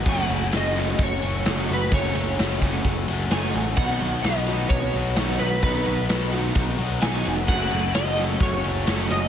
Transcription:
<<
  \new Staff \with { instrumentName = "Clean electric guitar" } { \time 4/4 \key fis \dorian \tempo 4 = 129 fis''4 dis''4 cis''4. b'8 | cis''4. r4. gis''4 | fis''4 dis''4 cis''4. b'8 | b'4. r4. gis''4 |
fis''4 dis''4 cis''4. dis''8 | }
  \new Staff \with { instrumentName = "Overdriven electric guitar" } { \time 4/4 \key fis \dorian <fis a cis' fis'>8 r4 <fis a cis' fis'>8 r4 <fis a cis' fis'>8 r8 | <fis a cis' fis'>8 r4 <fis a cis' fis'>8 r4 <fis a cis' fis'>8 r8 | <dis b dis' fis'>8 r4 <dis b dis' fis'>8 r4 <dis b dis' fis'>8 r8 | <dis b dis' fis'>8 r4 <dis b dis' fis'>8 r4 <dis b dis' fis'>8 r8 |
<fis a cis' fis'>8 r4 <fis a cis' fis'>8 r4 <fis a cis' fis'>8 r8 | }
  \new Staff \with { instrumentName = "Overdriven electric guitar" } { \time 4/4 \key fis \dorian <fis, cis fis a cis' fis'>8 <fis a cis' fis'>8 <fis, cis fis a cis' fis'>8 <fis a cis' fis'>4 <fis a cis' fis'>8 <fis a cis' fis'>4 | <fis, cis fis a cis' fis'>8 <fis a cis' fis'>8 <fis, cis fis a cis' fis'>8 <fis a cis' fis'>4 <fis a cis' fis'>8 <fis a cis' fis'>4 | <b, fis b dis' fis'>8 <b dis' fis'>8 <b, fis b dis' fis'>8 <b dis' fis'>4 <b dis' fis'>8 <fis b dis' fis'>4 | <b, fis b dis' fis'>8 <b dis' fis'>8 <b, fis b dis' fis'>8 <b dis' fis'>4 <b dis' fis'>8 <fis b dis' fis'>4 |
<fis, cis fis a cis' fis'>8 <fis a cis' fis'>8 <fis, cis fis a cis' fis'>8 <fis a cis' fis'>4 <fis a cis' fis'>8 <fis a cis' fis'>4 | }
  \new Staff \with { instrumentName = "Picked electric bass" } { \clef bass \time 4/4 \key fis \dorian fis,,8 fis,,8 fis,,4 fis,,8 fis,,8 fis,,8 fis,,8 | fis,,8 fis,,8 fis,,4 fis,,8 fis,,8 fis,,8 a,,8 | b,,8 b,,8 b,,4 b,,8 b,,8 b,,8 b,,8 | b,,8 b,,8 b,,4 b,,8 b,,8 b,,8 f,,8 |
fis,,8 fis,,8 fis,,4 fis,,8 fis,,8 fis,,8 fis,,8 | }
  \new DrumStaff \with { instrumentName = "Drums" } \drummode { \time 4/4 <cymc bd>8 cymr8 <cymr sn>8 cymr8 <bd cymr>8 cymr8 <cymr sn>8 cymr8 | <bd cymr>8 cymr8 <cymr sn>8 <bd cymr>8 <bd cymr>8 cymr8 <cymr sn>8 cymr8 | <cymc bd>8 cymr8 <cymr sn>16 sn16 cymr8 <bd cymr>8 cymr8 <cymr sn>8 cymr8 | <bd cymr>8 cymr8 <cymr sn>8 cymr8 <bd cymr>8 cymr8 <cymr sn>8 cymr8 |
<cymc bd>8 cymr8 <cymr sn>8 cymr8 <bd cymr>8 cymr8 <cymr sn>8 cymr8 | }
>>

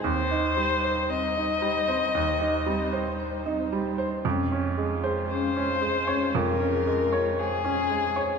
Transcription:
<<
  \new Staff \with { instrumentName = "Violin" } { \time 4/4 \key c \phrygian \tempo 4 = 57 c''4 ees''2~ ees''8 r8 | r4 c''4 bes'4 aes'4 | }
  \new Staff \with { instrumentName = "Vibraphone" } { \time 4/4 \key c \phrygian c'16 r8 g'16 c'16 r16 c''16 c'16 ees'16 g'16 c'16 r16 c''16 c'16 c''16 c''16 | des'16 r8 aes'16 des'16 r16 c''16 des'16 f'16 aes'16 des'16 f'16 c''16 des'16 c''16 c''16 | }
  \new Staff \with { instrumentName = "String section" } { \time 4/4 \key c \phrygian <g ees' c''>1 | <aes des' f'>1 | }
  \new Staff \with { instrumentName = "Grand piano" } { \time 4/4 \key c \phrygian ees,16 ees'16 g16 c''8 ees'16 g16 c''16 ees,16 ees'16 g16 c''8 ees'16 g16 c''16 | f,16 des'16 aes16 c''8 des'16 aes16 des''16 f,16 des'16 aes16 des''8 des'16 aes16 des''16 | }
>>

